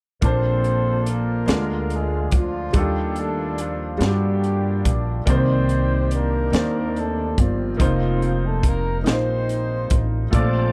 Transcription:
0.21 1.44 A#1 medium
0.21 1.45 A#2 soft
0.21 1.40 A#3 medium
0.21 2.72 A#3 medium
0.21 1.47 C4 medium
0.21 1.04 C4 medium
0.21 1.40 D4 medium
0.21 1.08 F4 medium
0.21 1.46 A4 medium
0.21 1.47 C5 medium
0.21 1.04 C5 medium
0.21 7.76 D5 medium
0.21 1.41 A5 medium
0.21 kick medium
0.21 closed hi-hat medium
0.25 1.42 C5 medium
0.64 closed hi-hat soft
1.06 1.92 A#3 medium
1.06 2.30 F4 medium
1.06 1.92 A#4 medium
1.06 closed hi-hat medium
1.46 2.28 D2 medium
1.46 2.71 D3 soft
1.46 2.65 G#3 medium
1.46 2.73 G#3 medium
1.46 2.66 D4 soft
1.46 5.23 F4 medium
1.46 2.67 F4 soft
1.46 snare medium
1.46 closed hi-hat medium
1.50 2.67 A#4 medium
1.90 closed hi-hat soft
1.95 2.35 G#3 medium
1.95 2.35 G#4 medium
2.31 2.71 D2 medium
2.31 kick medium
2.31 closed hi-hat medium
2.36 2.77 F3 medium
2.36 2.77 F4 medium
2.73 3.96 D#2 medium
2.73 3.97 D#3 medium
2.73 3.92 G3 medium
2.73 5.25 G3 medium
2.73 3.93 D4 medium
2.73 3.93 F4 medium
2.73 5.25 A4 medium
2.73 3.94 A4 medium
2.73 kick medium
2.73 closed hi-hat medium
2.78 3.19 G3 medium
2.78 3.99 A#3 medium
2.78 3.99 D4 medium
2.78 3.19 G4 medium
3.16 3.60 A3 medium
3.16 3.60 A4 medium
3.16 closed hi-hat soft
3.58 4.02 F3 medium
3.58 4.02 F4 medium
3.58 closed hi-hat medium
3.98 4.81 G2 medium
3.98 5.18 G3 medium
3.98 5.18 D4 soft
3.98 5.19 F4 soft
3.98 closed hi-hat medium
4.02 4.98 G3 medium
4.02 5.24 A#3 medium
4.02 5.24 D4 medium
4.02 4.08 F#4 soft
4.02 4.98 G4 medium
4.02 snare medium
4.08 5.23 G4 medium
4.44 closed hi-hat soft
4.85 5.24 A#1 medium
4.85 kick medium
4.85 closed hi-hat medium
5.26 6.49 C2 medium
5.26 6.50 C3 soft
5.26 7.77 D#3 medium
5.26 6.46 D#3 medium
5.26 10.72 G3 medium
5.26 6.45 A#3 medium
5.26 10.28 C4 medium
5.26 6.45 D5 medium
5.26 kick medium
5.26 closed hi-hat medium
5.30 6.09 C4 medium
5.30 6.12 D#4 medium
5.30 6.51 G4 medium
5.30 6.47 C5 medium
5.30 6.09 C5 medium
5.69 closed hi-hat soft
6.11 7.35 D4 medium
6.11 7.35 D#4 medium
6.11 closed hi-hat medium
6.15 6.97 A#3 medium
6.15 6.97 A#4 medium
6.52 7.33 D#2 medium
6.52 7.72 D#3 soft
6.52 7.71 A#3 soft
6.52 7.73 C5 medium
6.52 7.72 D5 soft
6.52 snare medium
6.52 closed hi-hat medium
6.96 7.39 A3 medium
6.96 7.39 A4 medium
6.96 closed hi-hat soft
7.38 7.77 G1 medium
7.38 8.45 F3 medium
7.38 8.61 A#3 medium
7.38 8.61 C4 medium
7.38 8.45 F4 medium
7.38 kick medium
7.38 closed hi-hat medium
7.77 9.02 F1 medium
7.77 10.30 F3 medium
7.77 8.97 A#3 medium
7.77 8.98 D#4 medium
7.77 10.30 D#4 medium
7.77 8.98 F4 medium
7.77 8.99 C5 medium
7.77 kick medium
7.77 closed hi-hat medium
8.22 closed hi-hat soft
8.46 8.66 A3 medium
8.46 8.66 A4 medium
8.63 kick medium
8.63 closed hi-hat soft
8.67 8.98 A#3 medium
8.67 8.98 A#4 medium
9.03 9.87 A#1 medium
9.03 10.23 A#3 soft
9.03 10.24 D#4 soft
9.03 10.25 F4 soft
9.03 10.25 C5 medium
9.03 snare medium
9.03 closed hi-hat medium
9.10 10.04 C4 medium
9.10 10.31 D#4 medium
9.10 10.04 C5 medium
9.49 closed hi-hat soft
9.90 10.30 A1 medium
9.90 kick medium
9.90 closed hi-hat medium
10.31 10.72 A#1 medium
10.31 10.72 A#2 soft
10.31 10.72 F3 medium
10.31 10.72 A3 medium
10.31 10.72 D4 medium
10.31 10.72 F4 medium
10.31 10.72 A4 medium
10.31 10.72 A4 soft
10.31 10.72 D5 medium
10.31 10.72 F5 soft
10.31 10.72 A5 soft
10.31 10.72 D6 medium
10.31 kick medium
10.31 closed hi-hat medium
10.36 10.72 C4 medium
10.36 10.72 F4 medium
10.36 10.72 A4 medium
10.36 10.72 C5 medium

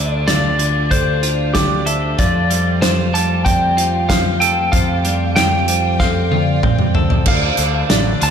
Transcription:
0.00 2.14 D2 medium
0.00 0.58 D3 medium
0.00 0.59 D4 medium
0.00 2.14 D4 medium
0.00 0.26 F4 medium
0.00 4.68 F4 medium
0.00 2.16 G4 medium
0.00 1.86 A4 medium
0.00 0.58 D5 medium
0.00 0.13 E5 medium
0.13 0.28 D5 medium
0.27 1.22 F4 medium
0.27 0.93 D5 medium
0.27 snare medium
0.27 closed hi-hat medium
0.59 2.18 D3 medium
0.59 0.91 D5 medium
0.59 closed hi-hat soft
0.91 1.53 D4 medium
0.91 1.23 A4 medium
0.91 1.57 C5 medium
0.91 kick medium
0.91 closed hi-hat medium
1.23 2.53 F4 soft
1.23 1.86 D5 medium
1.23 closed hi-hat soft
1.54 2.18 D4 medium
1.54 1.87 G4 medium
1.54 kick medium
1.54 snare loud
1.54 closed hi-hat medium
1.86 2.53 A4 medium
1.86 2.18 C5 medium
1.86 2.19 E5 medium
1.86 closed hi-hat soft
2.18 4.69 F2 medium
2.18 4.72 F3 medium
2.18 7.23 A3 medium
2.18 7.23 G4 medium
2.18 2.82 D5 medium
2.18 2.50 F5 medium
2.18 kick medium
2.18 closed hi-hat medium
2.50 3.12 G3 medium
2.50 3.12 C5 medium
2.50 closed hi-hat soft
2.82 3.77 F4 medium
2.82 3.15 C5 medium
2.82 snare loud
2.82 closed hi-hat medium
3.13 4.73 G3 medium
3.13 3.45 C5 medium
3.13 3.44 A5 medium
3.13 closed hi-hat medium
3.45 4.08 C4 medium
3.45 3.77 D5 medium
3.45 4.11 G5 medium
3.45 kick medium
3.45 closed hi-hat medium
3.77 5.36 F4 medium
3.77 4.41 C5 medium
3.77 closed hi-hat soft
4.09 5.68 C4 medium
4.09 4.40 F5 medium
4.09 kick medium
4.09 snare medium
4.09 closed hi-hat medium
4.40 6.00 A4 medium
4.40 4.73 F5 medium
4.40 4.72 G5 medium
4.40 closed hi-hat soft
4.72 7.23 F2 medium
4.72 6.31 F3 medium
4.72 5.05 C5 medium
4.72 5.32 F5 medium
4.72 7.24 G5 medium
4.72 kick medium
4.72 closed hi-hat medium
5.04 5.67 G3 medium
5.04 5.68 D5 medium
5.04 closed hi-hat medium
5.36 6.30 F4 medium
5.36 5.95 G5 medium
5.36 snare medium
5.36 closed hi-hat medium
5.68 7.26 G3 medium
5.68 6.00 C5 medium
5.68 closed hi-hat medium
6.00 6.63 C4 medium
6.00 6.31 A4 medium
6.00 6.59 F5 medium
6.00 kick medium
6.00 snare soft
6.31 7.27 F4 medium
6.31 6.95 D5 medium
6.31 high tom medium
6.63 7.27 C4 medium
6.63 kick medium
6.63 mid tom medium
6.79 mid tom medium
6.95 7.27 A4 medium
6.95 7.27 C5 medium
6.95 floor tom medium
7.10 floor tom medium
7.26 7.50 D2 medium
7.26 7.56 D3 medium
7.26 8.30 A3 medium
7.26 8.30 F4 medium
7.26 7.58 D5 medium
7.26 8.30 D5 medium
7.26 8.25 F5 medium
7.26 kick loud
7.26 crash medium
7.57 7.82 D2 medium
7.57 8.30 D3 medium
7.57 7.90 C5 medium
7.57 closed hi-hat medium
7.89 8.14 A1 medium
7.89 8.30 D4 medium
7.89 8.21 D5 medium
7.89 snare loud
7.89 closed hi-hat medium
8.21 8.30 D2 medium
8.21 8.30 F4 medium
8.21 8.30 F5 medium
8.21 8.30 A5 medium
8.21 closed hi-hat medium

